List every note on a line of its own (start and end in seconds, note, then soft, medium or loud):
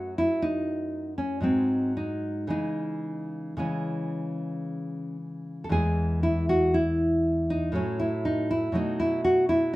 0.00 1.39 F#2 soft
0.00 1.39 F#3 soft
0.00 1.40 A3 soft
0.00 0.16 F#4 medium
0.18 0.44 E4 medium
0.42 1.15 D#4 medium
1.18 1.43 C#4 medium
1.41 2.47 G#2 soft
1.41 2.47 F#3 soft
1.41 2.48 G#3 soft
1.41 1.95 C4 medium
1.97 2.49 D#4 medium
2.47 3.55 C#3 soft
2.47 3.55 E3 soft
2.47 3.56 G#3 soft
2.47 3.56 D#4 medium
3.57 5.67 C#3 soft
3.57 5.67 E3 soft
3.57 5.68 G#3 soft
3.57 5.15 C#4 medium
5.64 5.71 A4 soft
5.69 7.70 E2 soft
5.69 7.70 E3 soft
5.69 7.71 G#3 soft
5.69 6.22 G#4 medium
6.23 6.49 E4 medium
6.49 6.75 F#4 medium
6.74 7.47 E4 medium
7.50 7.75 D#4 medium
7.72 8.71 A2 soft
7.72 8.71 F#3 soft
7.72 8.72 A3 soft
7.72 8.01 C#4 medium
8.00 8.25 E4 medium
8.25 8.51 D#4 medium
8.51 8.76 E4 medium
8.72 9.76 B2 soft
8.72 9.76 F#3 soft
8.72 9.76 A3 soft
8.72 9.00 D#4 medium
9.00 9.24 E4 medium
9.25 9.49 F#4 medium
9.49 9.74 E4 medium